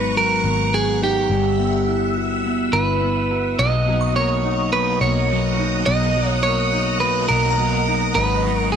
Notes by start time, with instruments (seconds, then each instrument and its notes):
Already playing: picked electric bass G#1, clean electric guitar G#2 F#3 B3 D#4 B4, string machine F#5 A#5 C#6
0.16 clean electric guitar F#3 A#4
0.44 picked electric bass G#1, clean electric guitar B3
0.74 clean electric guitar G#4
1.02 clean electric guitar D#4 G4
1.29 picked electric bass G1, clean electric guitar G3, string machine E5 E6
1.59 clean electric guitar B3
1.88 clean electric guitar E4
2.16 clean electric guitar F#4
2.46 clean electric guitar B3
2.73 picked electric bass G1, clean electric guitar E4 B4
3.03 clean electric guitar B3
3.31 clean electric guitar F#4
3.58 picked electric bass B1, overdriven electric guitar B2 F#3 A#3 D#4, clean electric guitar B2 D#5, string machine D#5 A#5 D#6
3.87 clean electric guitar F#3, overdriven electric guitar A#3 D#4
3.91 overdriven electric guitar F#3
4.01 synth bell C#6
4.16 clean electric guitar A#3 C#5
4.45 clean electric guitar D#4
4.73 overdriven electric guitar B2 F#3 A#3, clean electric guitar F#3 B4
4.77 overdriven electric guitar D#4
5.01 picked electric bass B1, clean electric guitar A#3 C#5
5.30 overdriven electric guitar B2 F#3 A#3 D#4, clean electric guitar F#3
5.60 clean electric guitar D#4
5.86 picked electric bass B1, overdriven electric guitar B2 F#3 A#3 D#4, clean electric guitar B2 D#5
6.15 clean electric guitar F#3, overdriven electric guitar A#3 D#4
6.19 overdriven electric guitar F#3
6.28 clean electric guitar C#5
6.43 clean electric guitar A#3 C#5
6.73 clean electric guitar D#4
7.00 overdriven electric guitar B2 F#3 A#3, clean electric guitar F#3 B4
7.05 overdriven electric guitar D#4
7.29 picked electric bass B1, clean electric guitar A#3 A#4
7.50 synth bell A#5
7.58 overdriven electric guitar B2 F#3 A#3 D#4, clean electric guitar F#3
7.88 clean electric guitar D#4
8.15 picked electric bass G#1, overdriven electric guitar G#2 C#3 F#3 B3 D#4, clean electric guitar G#2 B4, string machine C#6
8.45 clean electric guitar F#3, overdriven electric guitar F#3 B3 D#4
8.58 clean electric guitar A#4
8.72 clean electric guitar G#4